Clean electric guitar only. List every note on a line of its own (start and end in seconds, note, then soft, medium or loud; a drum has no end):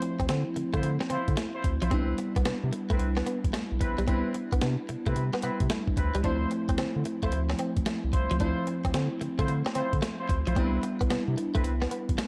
0.02 muted clean electric guitar stroke soft
0.20 0.26 C4 medium
0.29 0.41 C4 medium
0.56 muted clean electric guitar stroke soft
0.74 0.80 A3 medium
0.83 muted clean electric guitar stroke soft
1.01 1.07 C4 medium
1.10 1.21 C4 medium
1.37 1.49 A3 medium
1.64 muted clean electric guitar stroke soft
1.82 1.88 F3 medium
1.91 2.03 C4 medium
2.18 muted clean electric guitar stroke soft
2.36 2.42 B3 medium
2.46 2.57 B3 medium
2.73 muted clean electric guitar stroke soft
2.90 2.96 A3 medium
2.99 muted clean electric guitar stroke soft
3.17 3.23 B3 medium
3.26 3.38 B3 medium
3.53 3.65 A3 medium
3.81 muted clean electric guitar stroke soft
3.98 4.04 G3 medium
4.08 4.19 C4 medium
4.35 muted clean electric guitar stroke soft
4.53 4.59 B3 medium
4.62 4.73 B3 medium
4.89 muted clean electric guitar stroke soft
5.07 5.13 A3 medium
5.16 muted clean electric guitar stroke soft
5.34 5.40 B3 medium
5.43 5.55 B3 medium
5.70 5.82 A3 medium
5.98 muted clean electric guitar stroke soft
6.15 6.21 G3 medium
6.24 6.36 D4 medium
6.51 muted clean electric guitar stroke soft
6.69 6.75 C4 medium
6.78 6.90 C4 medium
7.06 muted clean electric guitar stroke soft
7.23 7.29 A3 medium
7.33 muted clean electric guitar stroke soft
7.50 7.56 C4 medium
7.59 7.70 C4 medium
7.86 7.98 A3 medium
8.14 muted clean electric guitar stroke soft
8.31 8.37 F3 medium
8.41 8.52 D4 medium
8.67 muted clean electric guitar stroke soft
8.85 8.91 C4 medium
8.95 9.06 C4 medium
9.21 muted clean electric guitar stroke soft
9.39 9.45 A3 medium
9.48 muted clean electric guitar stroke soft
9.66 9.72 C4 medium
9.75 9.87 C4 medium
10.02 10.14 A3 medium
10.29 muted clean electric guitar stroke soft
10.47 10.53 F3 medium
10.56 10.68 C4 medium
10.83 muted clean electric guitar stroke soft
11.01 11.07 B3 medium
11.10 11.22 B3 medium
11.38 muted clean electric guitar stroke soft
11.55 11.61 A3 medium
11.64 muted clean electric guitar stroke soft
11.82 11.88 B3 medium
11.91 12.03 B3 medium
12.18 12.27 A3 medium